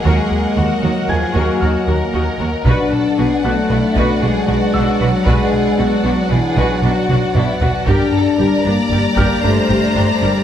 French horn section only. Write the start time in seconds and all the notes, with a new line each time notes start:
0.06 G#3
0.83 F#3
1.09 F3
1.35 F#3
2.66 D4
3.44 A3
4.22 G#3
5.00 F#3
5.27 G#3
6.06 F#3
6.31 E3
6.58 F#3
7.88 D4
8.66 A#3
9.44 A3
10.24 G3